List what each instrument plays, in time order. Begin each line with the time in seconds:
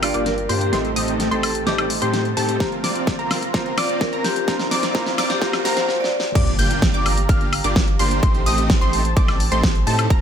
Already playing: sub bass G1, grand piano G3 A#3 D4 F4, analog synth pad F4 A#4 G5, riser
0.00 grand piano G2 G3 A#3 D4 F4, vibraphone D5, open hi-hat, high woodblock
0.14 sub bass G1, supersaw synth A#3 D4 F4 G4 D5, synth pluck D6, closed hi-hat
0.26 vibraphone A#4, snare, closed hi-hat
0.38 closed hi-hat
0.49 sub bass G2, supersaw synth A#3 D4 F4 G4 C5, vibraphone G4, synth pluck C6, open hi-hat
0.61 vibraphone G4, closed hi-hat
0.72 sub bass A1, grand piano A2 G3 A3 C4 D#4, supersaw synth A3 C4 D#4 G4 C5, analog synth pad G4 C5 A5, synth pluck C6, snare, closed hi-hat
0.85 closed hi-hat
0.96 sub bass A1, supersaw synth A3 C4 D#4 G4 D#5, synth pluck D#6, open hi-hat
1.08 closed hi-hat
1.20 snare, closed hi-hat
1.31 sub bass A1, supersaw synth A3 C4 D#4 G4 C5, vibraphone A4, synth pluck C6, closed hi-hat
1.43 vibraphone A4, open hi-hat, high woodblock
1.55 closed hi-hat
1.65 sub bass A1, grand piano A2 G3 A3 C4 D#4, supersaw synth A3 C4 D#4 G4 D5, vibraphone G4, synth pluck D6, snare, closed hi-hat
1.78 closed hi-hat, high woodblock
1.90 open hi-hat
2.02 sub bass A2, supersaw synth A3 C4 D#4 G4 C5, vibraphone G4, synth pluck C6, closed hi-hat
2.13 vibraphone G4, snare, closed hi-hat
2.25 closed hi-hat
2.37 sub bass A2, supersaw synth A3 C4 D#4 G4 A4, vibraphone G4, synth pluck A5, open hi-hat
2.49 vibraphone G4, closed hi-hat
2.59 sub bass F1, grand piano F3 A#3 C4 F4, supersaw synth C4 A#4, analog synth pad F4 A#5, synth pluck A#5, kick, snare, closed hi-hat
2.72 closed hi-hat
2.84 sub bass F1, supersaw synth C4 F4 D5, synth pluck D6, snare, open hi-hat
2.96 closed hi-hat
3.07 kick, snare, closed hi-hat
3.19 sub bass F1, supersaw synth C4 F4 A#4, synth pluck A#5, closed hi-hat
3.31 snare, open hi-hat, high woodblock
3.42 closed hi-hat
3.53 sub bass F1, grand piano F3 A#3 C4 F4, supersaw synth C4 F4 A#4, synth pluck A#5, kick, snare, closed hi-hat
3.66 closed hi-hat
3.77 sub bass F1, supersaw synth C4 F4 D5, vibraphone D5, synth pluck D6, snare, open hi-hat, high woodblock
3.89 closed hi-hat
4.01 vibraphone A#4, kick, snare, closed hi-hat
4.13 sub bass F1, supersaw synth C4 F4 A#4, synth pluck A#5, closed hi-hat
4.24 vibraphone G4, snare, open hi-hat
4.36 vibraphone G4, closed hi-hat
4.47 sub bass A#1, grand piano F3 A#3 C4 F4, supersaw synth C4 F4 A#4, analog synth pad D5, synth pluck A#5, kick, snare, closed hi-hat
4.60 snare, closed hi-hat
4.71 sub bass A#1, supersaw synth C4 F4 D5, synth pluck D6, snare, open hi-hat
4.83 snare, closed hi-hat
4.94 sub bass A#1, grand piano F3 A#3 C4 F4, supersaw synth C4 F4 A#4, synth pluck A#5, kick, snare, closed hi-hat
5.06 snare, closed hi-hat
5.18 sub bass A#1, supersaw synth C4 F4 D5, synth pluck D6, snare, open hi-hat, high woodblock
5.30 vibraphone G4, snare, closed hi-hat
5.40 sub bass A#1, grand piano F3 A#3 C4 F4, supersaw synth C4 F4 A#4, synth pluck A#5, kick, snare, closed hi-hat
5.53 snare, closed hi-hat, high woodblock
5.64 sub bass A#1, grand piano F3 A#3 C4 F4, supersaw synth C4 F4 A#4, synth pluck A#5, snare, open hi-hat
5.77 vibraphone C5, snare, closed hi-hat
5.88 vibraphone C5, snare
6.00 vibraphone D5
6.04 snare
6.20 snare
6.35 sub bass G1, supersaw synth A#3 D4 F4 G4 D5, analog synth pad G4 F5 A#5, synth pluck D6, kick, closed hi-hat, crash, impact
6.47 closed hi-hat
6.59 sub bass G1, supersaw synth A#3 D4 F4 G4 G5, synth pluck G6, open hi-hat
6.71 closed hi-hat
6.82 kick, snare, closed hi-hat
6.94 sub bass G1, supersaw synth A#3 D4 F4 G4 D5, synth pluck D6, closed hi-hat
7.06 open hi-hat, high woodblock
7.17 closed hi-hat
7.29 sub bass G1, supersaw synth A#3 D4 F4 G4 F5, synth pluck F6, kick, closed hi-hat
7.41 closed hi-hat
7.53 open hi-hat, high woodblock
7.64 sub bass G1, supersaw synth A#3 D4 F4 G4 D5, synth pluck D6, closed hi-hat
7.76 kick, snare, closed hi-hat
7.88 closed hi-hat
7.99 sub bass G1, supersaw synth A#3 D4 F4 G4 C5, synth pluck C6, open hi-hat
8.11 closed hi-hat
8.23 sub bass A1, supersaw synth A3 D#4 G4 C5, analog synth pad C5 A5, synth pluck C6, kick, closed hi-hat
8.35 closed hi-hat
8.46 sub bass A1, supersaw synth A3 C4 D#4 G4 D#5, synth pluck D#6, open hi-hat
8.58 closed hi-hat
8.70 kick, snare, closed hi-hat
8.81 sub bass A1, supersaw synth A3 C4 D#4 G4 C5, synth pluck C6, closed hi-hat
8.93 open hi-hat
9.05 closed hi-hat
9.17 sub bass A1, supersaw synth A3 C4 D#4 G4 D5, synth pluck D6, kick, closed hi-hat
9.28 snare, closed hi-hat, high woodblock
9.40 open hi-hat
9.52 sub bass A1, supersaw synth A3 C4 D#4 G4 C5, synth pluck C6, closed hi-hat
9.63 kick, snare, closed hi-hat
9.75 closed hi-hat
9.87 sub bass A2, supersaw synth A3 C4 D#4 G4 A4, synth pluck A5, open hi-hat
9.99 closed hi-hat, high woodblock
10.10 sub bass F1, supersaw synth C4 F4 A#4, analog synth pad F4 A#5, synth pluck A#5, kick, closed hi-hat